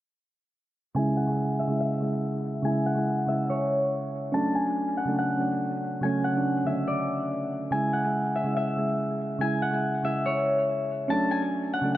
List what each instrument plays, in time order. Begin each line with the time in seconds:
0.95 synth keys C#3 G#3, harp G#5
0.99 synth keys E4
1.17 harp F#5
1.59 harp E5
1.68 synth keys C#3 G#3
1.72 synth keys E4
1.80 harp E5
2.00 synth keys C#3 G#3 E4
2.62 synth keys C#3 G#3 E4, harp G#5
2.86 harp F#5
2.95 synth keys C#3 G#3
2.99 synth keys E4
3.27 synth keys C#3 G#3, harp E5
3.31 synth keys E4
3.50 harp C#5
4.32 synth keys F#3 A3 C#4, harp A5
4.36 synth keys D4
4.55 harp G#5
4.97 harp F#5
5.05 synth keys C#3 F#3 A3
5.09 synth keys D4
5.18 harp F#5
5.37 synth keys F#3 A3 C#4
5.41 synth keys D4
6.01 synth keys C#3 F#3 A3, harp G#5
6.05 synth keys C#4
6.24 harp F#5
6.33 synth keys C#3 F#3 A3
6.37 synth keys D4
6.64 synth keys D3 F#3 A3, harp E5
6.68 synth keys D4
6.87 harp D5
7.71 synth keys C#3 G#3, harp G#5
7.75 synth keys E4
7.93 harp F#5
8.35 harp E5
8.44 synth keys C#3 G#3 E4
8.57 harp E5
8.76 synth keys C#3 G#3 E4
9.39 synth keys C#3 G#3, harp G#5
9.43 synth keys E4
9.62 harp F#5
9.71 synth keys C#3 G#3
9.75 synth keys E4
10.03 synth keys C#3 G#3 E4, harp E5
10.26 harp C#5
11.08 synth keys F#3 A3 C#4, harp A5
11.12 synth keys D4
11.31 harp G#5
11.73 harp F#5
11.81 synth keys C#3 F#3 A3 D4